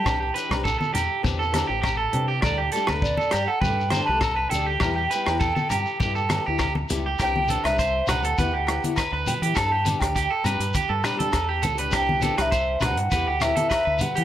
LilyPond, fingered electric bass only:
\new Staff \with { instrumentName = "Fingered electric bass" } { \clef bass \time 4/4 \key c \lydian \tempo 4 = 101 c,8 r16 c,8 r16 e,16 r16 e,8. a,,8. c8 | d,8 r16 d,8 r16 g,16 r16 g,8. c,8. d,8 | e,8 r16 e,8 r16 g,16 r16 g,8. d,8. cis,8 | c,8. c,8. c,16 d,16 e,16 d,8 r8 d,16 r16 e16 |
g,8. d,8 r16 g,16 g,16 r16 g,16 g8 e,8 cis,8 | c,8. c,8. c,16 g,16 e,16 d,8 r8 d,16 r16 e16 | }